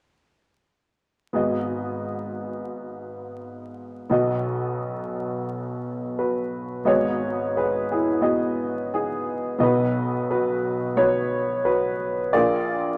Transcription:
1.33 4.06 G#1 soft
1.33 4.06 G#2 soft
1.33 4.05 B3 soft
1.33 4.06 F#4 soft
1.33 4.06 G#4 soft
1.33 4.07 D#5 soft
4.10 6.82 B1 soft
4.10 6.82 B2 medium
4.10 6.81 B3 soft
4.10 6.82 D#4 soft
4.10 6.17 F#4 soft
4.10 6.82 D#5 medium
6.19 6.83 F#4 soft
6.19 6.89 B4 medium
6.85 9.57 G#1 soft
6.85 9.57 G#2 soft
6.85 8.03 B3 medium
6.85 8.03 F#4 soft
6.85 7.56 G#4 soft
6.85 7.58 C#5 medium
6.85 8.04 D#5 medium
7.57 7.88 G#4 soft
7.57 7.91 B4 medium
7.91 8.89 E4 soft
7.91 8.21 G#4 medium
8.21 9.40 B3 soft
8.21 9.40 F#4 soft
8.21 8.92 G#4 soft
8.21 9.40 D#5 medium
8.94 9.58 D#4 soft
8.94 9.64 G#4 medium
9.58 12.30 B1 soft
9.58 12.30 B2 soft
9.58 10.76 B3 medium
9.58 10.77 D#4 soft
9.58 9.62 F#4 soft
9.58 10.77 D#5 medium
9.63 10.26 F#4 soft
9.63 10.29 B4 medium
10.31 10.95 F#4 soft
10.31 10.94 B4 medium
10.97 12.14 B3 medium
10.97 12.14 D#4 soft
10.97 11.64 F#4 soft
10.97 11.64 B4 medium
10.97 11.62 C#5 medium
11.65 12.30 F#4 medium
11.65 12.36 B4 medium
12.33 12.97 A#1 soft
12.33 12.97 A#2 soft
12.33 12.97 A#3 medium
12.33 12.97 F4 medium
12.33 12.97 G#4 medium
12.33 12.97 A#4 medium
12.33 12.97 D5 medium

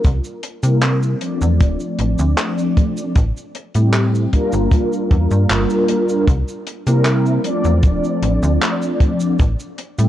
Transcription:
0.04 0.21 C2 medium
0.04 kick loud
0.04 closed hi-hat medium
0.04 cabasa medium
0.24 cabasa soft
0.43 closed hi-hat medium
0.63 1.15 C3 medium
0.63 1.16 G3 medium
0.63 1.17 A#3 medium
0.63 1.17 C4 medium
0.63 1.17 E4 medium
0.63 1.17 A#4 medium
0.63 closed hi-hat medium
0.63 cabasa medium
0.81 clap loud
0.81 closed hi-hat medium
0.81 cabasa medium
1.03 cabasa soft
1.20 3.13 F3 medium
1.20 3.14 A3 medium
1.20 3.14 C4 medium
1.20 3.14 D4 medium
1.20 3.15 D5 medium
1.20 closed hi-hat medium
1.41 1.62 E2 medium
1.41 cabasa medium
1.61 1.77 D1 medium
1.61 kick loud
1.61 closed hi-hat medium
1.61 cabasa medium
1.80 cabasa soft
1.99 2.15 A1 medium
1.99 closed hi-hat medium
2.19 2.34 D2 loud
2.19 cabasa medium
2.37 clap loud
2.37 closed hi-hat medium
2.37 cabasa medium
2.58 cabasa soft
2.77 kick loud
2.77 closed hi-hat medium
2.97 cabasa medium
3.16 3.32 A1 medium
3.16 kick loud
3.16 closed hi-hat medium
3.16 cabasa medium
3.37 cabasa medium
3.55 closed hi-hat medium
3.75 4.27 A2 medium
3.75 4.28 G3 medium
3.75 4.28 A3 medium
3.75 4.29 C4 medium
3.75 4.29 E4 medium
3.75 4.29 G4 medium
3.75 closed hi-hat medium
3.75 cabasa medium
3.94 clap loud
3.94 closed hi-hat medium
3.94 cabasa medium
4.15 cabasa soft
4.31 6.25 G3 loud
4.31 6.25 A#3 medium
4.31 6.25 D4 medium
4.31 6.26 F4 medium
4.31 6.26 A#4 loud
4.31 kick medium
4.31 closed hi-hat medium
4.52 4.68 G1 medium
4.52 cabasa medium
4.71 kick loud
4.71 closed hi-hat medium
4.71 cabasa medium
4.93 cabasa soft
5.11 5.27 E2 medium
5.11 kick loud
5.11 closed hi-hat medium
5.31 5.46 G2 medium
5.31 cabasa medium
5.50 5.66 G1 loud
5.50 clap loud
5.50 closed hi-hat medium
5.50 cabasa medium
5.70 cabasa soft
5.88 closed hi-hat medium
6.09 cabasa medium
6.28 6.44 C2 loud
6.28 kick loud
6.28 closed hi-hat medium
6.28 cabasa medium
6.48 cabasa soft
6.67 closed hi-hat medium
6.86 7.39 C3 medium
6.86 7.40 G3 medium
6.86 7.40 A#3 medium
6.86 7.40 C4 medium
6.86 7.40 E4 medium
6.86 7.41 A#4 medium
6.86 closed hi-hat medium
6.86 cabasa medium
7.05 clap loud
7.05 closed hi-hat medium
7.05 cabasa medium
7.26 cabasa soft
7.43 9.36 F3 medium
7.43 9.37 A3 medium
7.43 9.37 C4 medium
7.43 9.38 D4 medium
7.43 9.38 D5 medium
7.43 closed hi-hat medium
7.64 7.85 E2 medium
7.64 cabasa medium
7.83 8.00 D1 medium
7.83 kick loud
7.83 closed hi-hat medium
7.83 cabasa medium
8.04 cabasa soft
8.22 8.39 A1 medium
8.22 closed hi-hat medium
8.43 8.58 D2 loud
8.43 cabasa medium
8.61 clap loud
8.61 closed hi-hat medium
8.61 cabasa medium
8.82 cabasa soft
9.00 kick loud
9.00 closed hi-hat medium
9.20 cabasa medium
9.39 9.56 A1 medium
9.39 kick loud
9.39 closed hi-hat medium
9.39 cabasa medium
9.59 cabasa soft
9.78 closed hi-hat medium
9.98 10.09 A2 medium
9.98 10.09 G3 medium
9.98 10.09 A3 medium
9.98 10.09 C4 medium
9.98 10.09 E4 medium
9.98 10.09 G4 medium
9.98 closed hi-hat medium
9.98 cabasa medium

